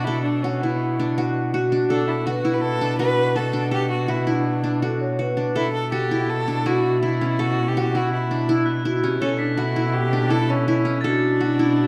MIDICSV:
0, 0, Header, 1, 6, 480
1, 0, Start_track
1, 0, Key_signature, 2, "minor"
1, 0, Tempo, 365631
1, 84, Time_signature, 5, 2, 24, 8
1, 15584, End_track
2, 0, Start_track
2, 0, Title_t, "Crotales"
2, 0, Program_c, 0, 9
2, 7776, Note_on_c, 0, 93, 47
2, 8845, Note_off_c, 0, 93, 0
2, 11365, Note_on_c, 0, 90, 48
2, 12322, Note_on_c, 0, 95, 54
2, 12427, Note_off_c, 0, 90, 0
2, 13381, Note_off_c, 0, 95, 0
2, 14452, Note_on_c, 0, 93, 48
2, 15534, Note_off_c, 0, 93, 0
2, 15584, End_track
3, 0, Start_track
3, 0, Title_t, "Vibraphone"
3, 0, Program_c, 1, 11
3, 0, Note_on_c, 1, 62, 64
3, 1061, Note_on_c, 1, 64, 78
3, 1128, Note_off_c, 1, 62, 0
3, 1964, Note_off_c, 1, 64, 0
3, 2010, Note_on_c, 1, 66, 70
3, 2501, Note_on_c, 1, 69, 84
3, 2502, Note_off_c, 1, 66, 0
3, 2985, Note_off_c, 1, 69, 0
3, 2989, Note_on_c, 1, 71, 77
3, 6346, Note_on_c, 1, 69, 83
3, 6433, Note_off_c, 1, 71, 0
3, 6574, Note_on_c, 1, 73, 77
3, 6583, Note_off_c, 1, 69, 0
3, 6818, Note_off_c, 1, 73, 0
3, 6821, Note_on_c, 1, 71, 78
3, 7280, Note_on_c, 1, 69, 78
3, 7314, Note_off_c, 1, 71, 0
3, 8734, Note_on_c, 1, 66, 80
3, 8777, Note_off_c, 1, 69, 0
3, 9184, Note_off_c, 1, 66, 0
3, 9195, Note_on_c, 1, 64, 63
3, 11626, Note_on_c, 1, 66, 73
3, 11675, Note_off_c, 1, 64, 0
3, 11848, Note_on_c, 1, 67, 73
3, 11866, Note_off_c, 1, 66, 0
3, 12071, Note_off_c, 1, 67, 0
3, 12087, Note_on_c, 1, 69, 82
3, 14493, Note_on_c, 1, 66, 73
3, 14547, Note_off_c, 1, 69, 0
3, 14933, Note_off_c, 1, 66, 0
3, 15154, Note_on_c, 1, 61, 47
3, 15207, Note_off_c, 1, 61, 0
3, 15218, Note_on_c, 1, 62, 62
3, 15457, Note_off_c, 1, 62, 0
3, 15469, Note_on_c, 1, 66, 72
3, 15584, Note_off_c, 1, 66, 0
3, 15584, End_track
4, 0, Start_track
4, 0, Title_t, "Violin"
4, 0, Program_c, 2, 40
4, 52, Note_on_c, 2, 64, 88
4, 303, Note_off_c, 2, 64, 0
4, 310, Note_on_c, 2, 62, 72
4, 563, Note_on_c, 2, 61, 65
4, 583, Note_off_c, 2, 62, 0
4, 806, Note_on_c, 2, 59, 64
4, 825, Note_off_c, 2, 61, 0
4, 1532, Note_off_c, 2, 59, 0
4, 2492, Note_on_c, 2, 62, 90
4, 2733, Note_on_c, 2, 64, 73
4, 2753, Note_off_c, 2, 62, 0
4, 2962, Note_on_c, 2, 66, 73
4, 2981, Note_off_c, 2, 64, 0
4, 3333, Note_on_c, 2, 71, 61
4, 3352, Note_off_c, 2, 66, 0
4, 3432, Note_on_c, 2, 69, 87
4, 3452, Note_off_c, 2, 71, 0
4, 3906, Note_off_c, 2, 69, 0
4, 3914, Note_on_c, 2, 71, 93
4, 4411, Note_on_c, 2, 69, 77
4, 4431, Note_off_c, 2, 71, 0
4, 4883, Note_off_c, 2, 69, 0
4, 4892, Note_on_c, 2, 67, 90
4, 5107, Note_off_c, 2, 67, 0
4, 5129, Note_on_c, 2, 66, 71
4, 5375, Note_on_c, 2, 64, 67
4, 5395, Note_off_c, 2, 66, 0
4, 5626, Note_on_c, 2, 62, 67
4, 5645, Note_off_c, 2, 64, 0
4, 6336, Note_off_c, 2, 62, 0
4, 7304, Note_on_c, 2, 64, 84
4, 7517, Note_off_c, 2, 64, 0
4, 7525, Note_on_c, 2, 69, 74
4, 7754, Note_off_c, 2, 69, 0
4, 7772, Note_on_c, 2, 67, 74
4, 8267, Note_on_c, 2, 69, 84
4, 8287, Note_off_c, 2, 67, 0
4, 8749, Note_on_c, 2, 66, 81
4, 8768, Note_off_c, 2, 69, 0
4, 9209, Note_off_c, 2, 66, 0
4, 9217, Note_on_c, 2, 64, 73
4, 9712, Note_on_c, 2, 66, 88
4, 9732, Note_off_c, 2, 64, 0
4, 10083, Note_on_c, 2, 67, 78
4, 10102, Note_off_c, 2, 66, 0
4, 10454, Note_on_c, 2, 66, 74
4, 10473, Note_off_c, 2, 67, 0
4, 10664, Note_off_c, 2, 66, 0
4, 10672, Note_on_c, 2, 64, 63
4, 11570, Note_off_c, 2, 64, 0
4, 12089, Note_on_c, 2, 61, 85
4, 12310, Note_off_c, 2, 61, 0
4, 12332, Note_on_c, 2, 62, 64
4, 12578, Note_on_c, 2, 64, 73
4, 12598, Note_off_c, 2, 62, 0
4, 13047, Note_on_c, 2, 67, 85
4, 13067, Note_off_c, 2, 64, 0
4, 13520, Note_on_c, 2, 69, 96
4, 13540, Note_off_c, 2, 67, 0
4, 13777, Note_on_c, 2, 61, 81
4, 13797, Note_off_c, 2, 69, 0
4, 14480, Note_off_c, 2, 61, 0
4, 14488, Note_on_c, 2, 62, 85
4, 15584, Note_off_c, 2, 62, 0
4, 15584, End_track
5, 0, Start_track
5, 0, Title_t, "Qanun"
5, 0, Program_c, 3, 107
5, 0, Note_on_c, 3, 62, 67
5, 0, Note_on_c, 3, 64, 59
5, 0, Note_on_c, 3, 66, 65
5, 90, Note_on_c, 3, 69, 74
5, 224, Note_off_c, 3, 64, 0
5, 573, Note_off_c, 3, 66, 0
5, 579, Note_on_c, 3, 66, 66
5, 829, Note_on_c, 3, 64, 59
5, 1300, Note_off_c, 3, 62, 0
5, 1306, Note_on_c, 3, 62, 68
5, 1540, Note_off_c, 3, 66, 0
5, 1545, Note_on_c, 3, 66, 76
5, 1628, Note_off_c, 3, 69, 0
5, 2014, Note_off_c, 3, 66, 0
5, 2020, Note_on_c, 3, 66, 70
5, 2253, Note_off_c, 3, 62, 0
5, 2258, Note_on_c, 3, 62, 64
5, 2495, Note_on_c, 3, 69, 78
5, 2658, Note_off_c, 3, 64, 0
5, 2970, Note_off_c, 3, 66, 0
5, 2975, Note_on_c, 3, 66, 75
5, 3212, Note_on_c, 3, 64, 65
5, 3688, Note_off_c, 3, 62, 0
5, 3693, Note_on_c, 3, 62, 62
5, 3923, Note_off_c, 3, 66, 0
5, 3928, Note_on_c, 3, 66, 78
5, 4033, Note_off_c, 3, 69, 0
5, 4401, Note_off_c, 3, 66, 0
5, 4406, Note_on_c, 3, 66, 63
5, 4631, Note_off_c, 3, 62, 0
5, 4637, Note_on_c, 3, 62, 63
5, 4874, Note_on_c, 3, 69, 70
5, 5040, Note_off_c, 3, 64, 0
5, 5353, Note_off_c, 3, 66, 0
5, 5359, Note_on_c, 3, 66, 67
5, 5603, Note_on_c, 3, 64, 66
5, 6080, Note_off_c, 3, 62, 0
5, 6085, Note_on_c, 3, 62, 58
5, 6327, Note_off_c, 3, 66, 0
5, 6332, Note_on_c, 3, 66, 69
5, 6412, Note_off_c, 3, 69, 0
5, 6807, Note_off_c, 3, 66, 0
5, 6812, Note_on_c, 3, 66, 62
5, 7042, Note_off_c, 3, 62, 0
5, 7048, Note_on_c, 3, 62, 58
5, 7292, Note_on_c, 3, 69, 79
5, 7431, Note_off_c, 3, 64, 0
5, 7767, Note_off_c, 3, 66, 0
5, 7773, Note_on_c, 3, 66, 66
5, 8024, Note_on_c, 3, 64, 67
5, 8498, Note_off_c, 3, 62, 0
5, 8503, Note_on_c, 3, 62, 62
5, 8735, Note_off_c, 3, 64, 0
5, 8741, Note_on_c, 3, 64, 68
5, 8830, Note_off_c, 3, 69, 0
5, 9218, Note_off_c, 3, 64, 0
5, 9223, Note_on_c, 3, 64, 65
5, 9469, Note_on_c, 3, 61, 62
5, 9479, Note_off_c, 3, 66, 0
5, 9548, Note_off_c, 3, 62, 0
5, 9703, Note_on_c, 3, 69, 79
5, 10199, Note_on_c, 3, 66, 71
5, 10428, Note_off_c, 3, 64, 0
5, 10433, Note_on_c, 3, 64, 65
5, 10908, Note_on_c, 3, 62, 61
5, 10986, Note_off_c, 3, 61, 0
5, 11139, Note_off_c, 3, 64, 0
5, 11144, Note_on_c, 3, 64, 76
5, 11241, Note_off_c, 3, 69, 0
5, 11616, Note_off_c, 3, 64, 0
5, 11621, Note_on_c, 3, 64, 71
5, 11861, Note_on_c, 3, 61, 65
5, 11905, Note_off_c, 3, 66, 0
5, 11940, Note_off_c, 3, 62, 0
5, 12098, Note_on_c, 3, 69, 83
5, 12570, Note_on_c, 3, 66, 72
5, 12809, Note_off_c, 3, 64, 0
5, 12814, Note_on_c, 3, 64, 64
5, 13297, Note_on_c, 3, 62, 61
5, 13375, Note_off_c, 3, 61, 0
5, 13521, Note_off_c, 3, 64, 0
5, 13526, Note_on_c, 3, 64, 68
5, 13636, Note_off_c, 3, 69, 0
5, 14013, Note_off_c, 3, 64, 0
5, 14018, Note_on_c, 3, 64, 68
5, 14244, Note_on_c, 3, 61, 61
5, 14276, Note_off_c, 3, 66, 0
5, 14323, Note_off_c, 3, 62, 0
5, 14496, Note_on_c, 3, 69, 84
5, 14973, Note_on_c, 3, 66, 64
5, 15213, Note_off_c, 3, 64, 0
5, 15218, Note_on_c, 3, 64, 66
5, 15584, Note_off_c, 3, 61, 0
5, 15584, Note_off_c, 3, 64, 0
5, 15584, Note_off_c, 3, 66, 0
5, 15584, Note_off_c, 3, 69, 0
5, 15584, End_track
6, 0, Start_track
6, 0, Title_t, "Cello"
6, 0, Program_c, 4, 42
6, 0, Note_on_c, 4, 47, 58
6, 2484, Note_off_c, 4, 47, 0
6, 2484, Note_on_c, 4, 47, 63
6, 7296, Note_off_c, 4, 47, 0
6, 7296, Note_on_c, 4, 47, 63
6, 12087, Note_off_c, 4, 47, 0
6, 12087, Note_on_c, 4, 47, 69
6, 14490, Note_off_c, 4, 47, 0
6, 14490, Note_on_c, 4, 47, 68
6, 15584, Note_off_c, 4, 47, 0
6, 15584, End_track
0, 0, End_of_file